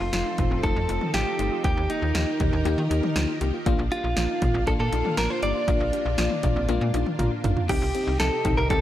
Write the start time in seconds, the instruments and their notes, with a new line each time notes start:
Already playing: string machine F3 C4 D#4 A4, clean electric guitar F4
0.00 fm bass F1, synth pluck F4
0.13 fm bass F1, fm electric piano A3 D#4 F4, synth pluck F4, snare, closed hi-hat
0.26 synth pluck D#4
0.38 fm bass F1, fm electric piano A3 D#4 F4, kick, closed hi-hat, mid tom
0.51 fm bass F1, synth pluck C4
0.63 fm bass F1, fm electric piano A3 D#4 F4, synth pluck D#4, clean electric guitar A4, kick, closed hi-hat
0.76 fm bass F2, synth pluck F4
0.88 fm bass F1, fm electric piano A3 D#4 F4, synth pluck D#4, closed hi-hat
1.01 mid tom
1.14 fm bass A1, fm electric piano A3 D#4 F4, synth pluck F4, clean electric guitar G4, snare, closed hi-hat
1.27 synth pluck F4
1.39 fm bass G1, fm electric piano A3 D#4 F4, synth pluck D#4, closed hi-hat
1.52 synth pluck F4
1.64 fm bass D#2, string machine D#3 G4 A#4, fm electric piano A#3 D#4 G4, synth pluck D#4, clean electric guitar G4, kick, closed hi-hat
1.77 fm bass D#2
1.90 fm electric piano A#3 D#4 G4, clean electric guitar D#4, synth pluck G4, closed hi-hat
2.02 fm bass D#2, synth pluck F4
2.15 fm bass D#2, fm electric piano A#3 D#4 G4, synth pluck F4, snare, closed hi-hat
2.27 synth pluck D#4
2.40 fm bass D#2, fm electric piano A#3 D#4 G4, kick, closed hi-hat, mid tom
2.53 fm bass D#2, synth pluck D4
2.65 fm bass D#2, fm electric piano A#3 D#4 G4, synth pluck D#4, closed hi-hat
2.78 fm bass D#3, synth pluck F4
2.90 fm bass D#2, fm electric piano A#3 D#4 G4, synth pluck D#4, closed hi-hat
3.03 mid tom
3.16 fm bass D2, fm electric piano A#3 D#4 G4, synth pluck F4, snare, closed hi-hat
3.28 synth pluck F4
3.41 fm bass C2, fm electric piano A#3 D#4 G4, synth pluck D#4, closed hi-hat
3.54 synth pluck F4
3.66 fm bass A#1, string machine A#3 D4 F4, fm electric piano A#3 D4 F4, synth pluck D4, kick, closed hi-hat
3.79 fm bass A#1
3.91 fm electric piano A#3 D4 F4, clean electric guitar F4, synth pluck G4, closed hi-hat
4.04 fm bass A#1, synth pluck F4
4.17 fm bass A#1, fm electric piano A#3 D4 F4, synth pluck F4, snare, closed hi-hat
4.29 synth pluck D#4
4.42 fm bass A#1, fm electric piano A#3 D4 F4, kick, closed hi-hat, mid tom
4.54 fm bass A#1, synth pluck C4
4.67 fm bass A#1, fm electric piano A#3 D4 F4, synth pluck D4, clean electric guitar A4, kick, closed hi-hat
4.79 fm bass A#2, synth pluck F4, clean electric guitar A4
4.92 fm bass A#1, fm electric piano A#3 D4 F4, synth pluck D#4, closed hi-hat
5.05 mid tom
5.17 fm bass A1, fm electric piano A#3 D4 F4, synth pluck F4, clean electric guitar A#4, snare, closed hi-hat
5.30 synth pluck F4, clean electric guitar C5
5.42 fm bass G1, fm electric piano A#3 D4 G4, synth pluck D#4, clean electric guitar D5, closed hi-hat
5.55 synth pluck F4
5.68 fm bass A#1, fm electric piano A#3 D4 F4, synth pluck D4, kick, closed hi-hat
5.80 fm bass A#1
5.93 fm electric piano A#3 D4 F4, synth pluck G4, closed hi-hat
6.05 fm bass A#1, synth pluck F4
6.18 fm bass A#1, fm electric piano A#3 D4 F4, synth pluck F4, snare, closed hi-hat
6.31 synth pluck D#4, mid tom
6.43 fm bass A#1, fm electric piano A#3 D4 F4, kick, closed hi-hat, mid tom
6.56 fm bass A#1, synth pluck C4
6.68 fm bass A#1, fm electric piano A#3 D4 F4, synth pluck D4, closed hi-hat, high tom
6.81 fm bass A#2, synth pluck F4, high tom
6.94 fm bass A#1, fm electric piano A#3 D4 F4, synth pluck D#4, closed hi-hat
7.06 mid tom
7.19 fm bass A1, fm electric piano A#3 D4 F4 A#5, synth pluck F4, closed hi-hat, mid tom
7.31 synth pluck F4
7.44 fm bass G1, fm electric piano A#3 D4 F4 F5, synth pluck D#4, closed hi-hat, floor tom
7.57 synth pluck F4, floor tom
7.69 fm bass C2, string machine C3 C4 D#4 G4, fm electric piano C4 D#4 G4, synth pluck D#4, clean electric guitar G4, kick, closed hi-hat, crash
7.82 fm bass C2
7.95 fm electric piano C4 D#4 G4, synth pluck G4, closed hi-hat
8.07 fm bass C2, synth pluck D#4
8.20 fm bass C2, fm electric piano C4 D#4 G4, synth pluck G4, clean electric guitar A4, snare, closed hi-hat
8.33 synth pluck G4
8.45 fm bass C2, fm electric piano C4 D#4 G4, synth pluck D#4, kick, closed hi-hat, mid tom
8.57 fm bass C2, clean electric guitar A#4
8.70 fm bass C2, fm electric piano C4 D#4 G4, synth pluck D#4, clean electric guitar A4, kick, closed hi-hat